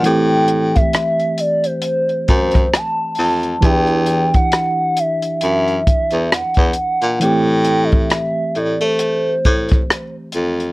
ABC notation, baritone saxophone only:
X:1
M:4/4
L:1/16
Q:"Swing 16ths" 1/4=67
K:Ador
V:1 name="Baritone saxophone" clef=bass
A,,4 z6 F,,2 z2 =F,,2 | E,,4 z4 F,,2 z E,, E,, E,, z ^A,, | A,,4- A,, z A,, A,3 A,,2 z2 =F,,2 |]